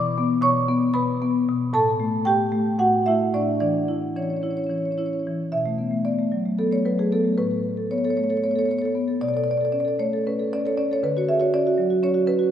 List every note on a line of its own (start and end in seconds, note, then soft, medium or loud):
0.00 0.40 B2 loud
0.00 0.40 D5 loud
0.00 0.41 D6 loud
0.18 0.67 B3 medium
0.42 0.92 B2 medium
0.42 0.92 C#5 loud
0.42 0.93 C#6 loud
0.69 1.21 B3 loud
0.94 1.47 B2 medium
0.94 1.20 B4 medium
0.94 1.20 B5 loud
1.22 1.72 B3 medium
1.49 1.74 B2 medium
1.73 2.24 A2 loud
1.73 2.23 A4 loud
1.73 2.24 A5 loud
2.00 2.51 A3 medium
2.25 2.77 A2 medium
2.25 2.76 G4 medium
2.25 2.77 G5 loud
2.52 3.05 A3 medium
2.78 3.33 A2 medium
2.78 3.05 F#4 medium
2.78 3.05 F#5 loud
3.06 3.59 A3 medium
3.06 3.32 E4 medium
3.06 3.32 E5 loud
3.34 3.60 A2 medium
3.34 3.60 D4 medium
3.34 3.59 D5 loud
3.60 4.15 E3 medium
3.60 4.13 D4 medium
3.60 4.14 D5 loud
3.88 4.42 E4 medium
4.16 4.68 E3 medium
4.16 4.24 C#4 medium
4.16 4.23 C#5 medium
4.23 4.33 C#4 soft
4.23 4.30 C#5 medium
4.30 4.42 C#4 soft
4.30 4.37 C#5 medium
4.37 4.44 C#5 medium
4.42 4.50 C#4 soft
4.42 4.96 E4 medium
4.42 4.51 C#5 medium
4.50 4.58 C#4 soft
4.50 4.57 C#5 medium
4.57 4.66 C#4 soft
4.57 4.64 C#5 medium
4.64 4.75 C#4 soft
4.64 4.71 C#5 medium
4.70 5.26 E3 medium
4.70 4.78 C#5 medium
4.75 4.82 C#4 soft
4.75 4.85 C#5 medium
4.82 4.91 C#4 soft
4.82 4.92 C#5 medium
4.91 4.98 C#4 soft
4.91 4.99 C#5 medium
4.98 5.07 C#4 soft
4.98 5.51 E4 medium
4.98 5.06 C#5 medium
5.06 5.15 C#4 soft
5.06 5.13 C#5 medium
5.13 5.22 C#4 soft
5.13 5.19 C#5 medium
5.19 5.23 C#5 medium
5.27 5.53 E3 medium
5.52 7.33 B2 medium
5.52 6.03 E5 medium
5.66 5.87 A3 medium
5.78 5.92 B3 medium
5.91 6.13 A3 medium
6.05 6.27 B3 medium
6.05 6.56 D5 medium
6.19 6.40 A3 medium
6.32 6.53 F#3 medium
6.45 6.67 A3 medium
6.58 6.80 B3 medium
6.58 6.72 A4 medium
6.72 6.93 A3 medium
6.72 6.85 C#5 medium
6.86 7.06 F#3 medium
6.86 6.98 B4 medium
6.98 7.19 A3 medium
6.98 7.12 G#4 medium
7.12 7.32 B3 medium
7.12 7.37 A4 medium
7.25 7.38 A3 medium
7.38 9.18 A2 medium
7.38 7.63 B4 loud
7.51 7.72 A4 medium
7.64 7.77 B4 medium
7.77 7.98 A4 medium
7.91 8.12 B3 medium
7.91 7.98 C#5 loud
7.98 8.04 C#5 medium
8.04 8.25 A4 medium
8.04 8.10 C#5 medium
8.10 8.17 C#5 medium
8.17 8.38 A3 medium
8.17 8.24 C#5 medium
8.24 8.30 C#5 medium
8.30 8.51 A4 medium
8.30 8.37 C#5 medium
8.37 8.44 C#5 medium
8.44 8.64 B3 medium
8.44 8.51 C#5 medium
8.51 8.59 C#5 medium
8.56 8.77 A4 medium
8.56 8.65 C#5 medium
8.65 8.90 B3 medium
8.65 8.71 C#5 medium
8.71 8.79 C#5 medium
8.79 9.03 A4 medium
8.79 8.85 C#5 medium
8.85 8.92 C#5 medium
8.95 9.16 B3 medium
9.08 9.21 A4 medium
9.21 10.97 B2 medium
9.21 9.28 D5 loud
9.28 9.37 D5 medium
9.34 9.55 A4 medium
9.34 9.44 D5 medium
9.44 9.51 D5 medium
9.48 9.60 B4 medium
9.48 9.57 D5 medium
9.57 9.81 A4 medium
9.57 9.65 D5 medium
9.65 9.72 D5 medium
9.72 9.93 C#4 medium
9.72 9.80 D5 medium
9.80 9.88 D5 medium
9.85 10.05 A4 medium
9.85 9.95 D5 medium
9.99 10.19 A3 medium
9.99 10.23 C#5 loud
10.13 10.33 A4 medium
10.27 10.46 C#4 medium
10.27 10.50 B4 medium
10.40 10.59 A4 medium
10.53 10.72 C#4 medium
10.53 10.64 D5 loud
10.66 10.85 A4 medium
10.66 10.77 C#5 medium
10.77 10.97 C#4 medium
10.77 10.89 D5 loud
10.91 11.03 A4 medium
10.91 11.03 C#5 loud
11.03 12.51 D3 medium
11.03 11.15 B4 loud
11.17 11.36 F#4 medium
11.17 11.28 C#5 medium
11.28 11.40 G#4 medium
11.28 11.40 E5 medium
11.40 11.60 F#4 medium
11.40 11.53 C#5 medium
11.54 11.73 C#4 medium
11.54 12.01 D5 loud
11.67 11.86 F#4 medium
11.78 11.98 F#3 medium
11.90 12.10 F#4 medium
12.03 12.23 C#4 medium
12.03 12.27 C#5 loud
12.14 12.35 F#4 medium
12.27 12.48 C#4 medium
12.27 12.51 B4 loud
12.39 12.51 F#4 medium